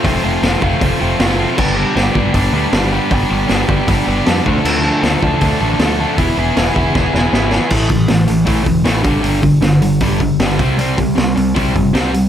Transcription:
<<
  \new Staff \with { instrumentName = "Distorted electric guitar" } { \time 4/4 \key e \phrygian \tempo 4 = 156 <f a c' f'>8 <f a c' f'>8 <f a c' f'>8 <f a c' f'>8 <f a c' f'>8 <f a c' f'>8 <f a c' f'>8 <f a c' f'>8 | <g b d' g'>8 <g b d' g'>8 <g b d' g'>8 <g b d' g'>8 <g b d' g'>8 <g b d' g'>8 <g b d' g'>8 <g b d' g'>8 | <g b d' g'>8 <g b d' g'>8 <g b d' g'>8 <g b d' g'>8 <g b d' g'>8 <g b d' g'>8 <g b d' g'>8 <d f a d' a'>8 | <d f a d' a'>8 <d f a d' a'>8 <d f a d' a'>8 <d f a d' a'>8 <d f a d' a'>8 <d f a d' a'>8 <d f a d' a'>8 <d f a d' a'>8 |
<e b e' gis'>8 <e b e' gis'>8 <e b e' gis'>8 <e b e' gis'>8 <e b e' gis'>8 <e b e' gis'>8 <e b e' gis'>8 <e b e' gis'>8 | \key a \minor <a, e a>8 <a, e>8 <a, e>8 <a, e>8 <a, e a>8 <a, e>8 <a, e a>8 <g, d g>8 | <g, d g>8 <g, d>8 <g, d>8 <g, d>8 <g, d g>8 <g, d>8 <g, d g>8 <c g c'>8 | <c g c'>8 <c g>8 <c g>8 <c g>8 <c g c'>8 <c g>8 <c g c'>8 <c g>8 | }
  \new Staff \with { instrumentName = "Picked electric bass" } { \clef bass \time 4/4 \key e \phrygian f,,8 f,,8 f,,8 f,,8 f,,8 f,,8 fis,,4 | g,,4 g,,8 g,,8 g,,8 d,8 g,,4 | g,,8 g,,8 g,,8 g,,8 g,,8 g,,8 f,8 d,8 | d,4 d,8 d,8 d,8 a,,8 d,4 |
e,,8 e,,8 e,,8 e,,8 e,,8 e,,8 gis,,4 | \key a \minor a,,8 a,,8 a,,8 a,,8 a,,8 e,,8 a,,8 g,,8 | g,,4 g,,4 g,,4 g,,8 c,8 | c,8 c,8 c,8 c,8 c,8 g,,8 c,4 | }
  \new DrumStaff \with { instrumentName = "Drums" } \drummode { \time 4/4 <hho bd>4 <hho sn>8 bd8 <hho bd>4 <hho sn>4 | <cymc bd>4 <hho sn>8 bd8 <hho bd>4 <hho sn>4 | <hho bd>4 <hho sn>8 bd8 <hho bd>4 <hho sn>8 bd8 | cymc4 <hho sn>8 bd8 <hho bd>4 <hho sn>4 |
<hho bd>4 <hho sn>8 bd8 <bd sn>8 sn8 sn8 sn8 | <cymc bd>8 <hho bd>8 <hho sn>8 hho8 <hho bd>8 <hho bd>8 <hho sn>8 <hho bd>8 | hho8 <hho bd>8 <hho sn>8 hho8 <hho bd>8 <hho bd>8 <hho sn>8 <hho bd>8 | hho8 <hho bd>8 <hho sn>8 hho8 <hho bd>8 <hho bd>8 <hho sn>8 hho8 | }
>>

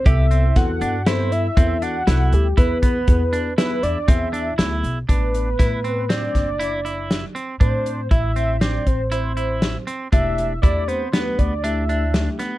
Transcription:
<<
  \new Staff \with { instrumentName = "Analog synth lead" } { \time 5/4 \key a \dorian \tempo 4 = 119 e''4 fis''4 c''8 e''4 fis''4 g'8 | b'8 b'4. b'8 d''8 e''4. r8 | b'2 d''2~ d''8 r8 | c''4 e''4 d''8 c''8 c''4. r8 |
e''4 d''8 c''8 b'8 d''8 e''4. r8 | }
  \new Staff \with { instrumentName = "Tine electric piano" } { \time 5/4 \key a \dorian <b e' a'>4 <b e' a'>4 <b e' a'>4 <b e' a'>4 <b e' a'>4 | <b e' gis'>4 <b e' gis'>4 <b e' gis'>4 <b e' gis'>4 <b e' gis'>4 | r1 r4 | r1 r4 |
<a d' g'>4 <a d' g'>4 <a d' g'>4 <a d' g'>4 <a d' g'>4 | }
  \new Staff \with { instrumentName = "Clean electric guitar" } { \time 5/4 \key a \dorian g'8 c'4 d'8 e'4 c'8 d'8 e'4 | e'8 b4 d'8 e'4 c'8 d'8 e'4 | d'4 e'8 c'8 c'4 e'8 e'4 c'8 | d'4 e'8 c'8 c'4 e'8 e'4 c'8 |
d'4 e'8 b8 b4 d'8 d'4 b8 | }
  \new Staff \with { instrumentName = "Upright bass" } { \clef bass \time 5/4 \key a \dorian c,4 e,8 g,4. e,4 c,8 d,8 | e,4 e,4. e,16 r16 e,4 d,8 b,,8 | a,,4 a,4. fis,,2 r8 | a,4 a,,4. a,,2 r8 |
e,,4 e,4. d,2 r8 | }
  \new DrumStaff \with { instrumentName = "Drums" } \drummode { \time 5/4 <hh bd>8 hh8 <hh bd sn>8 hh8 <hh sn>8 hh8 <hh bd>8 hh8 <hh sn>8 hh8 | <hh bd>8 <hh bd>8 <hh bd>8 hh8 <hh sn>8 hh8 <hh bd>8 hh8 <hh sn>8 hh8 | <hh bd>8 hh8 <hh bd sn>8 hh8 <hh sn>8 <hh bd sn>8 hh8 hh8 <hh sn>8 hh8 | <hh bd>8 hh8 <hh bd>8 hh8 <hh sn>8 <hh bd>8 hh8 hh8 <hh sn>8 hh8 |
<hh bd>8 hh8 <hh bd>8 hh8 <hh sn>8 <hh bd>8 hh8 hh8 <hh sn>8 <hh sn>8 | }
>>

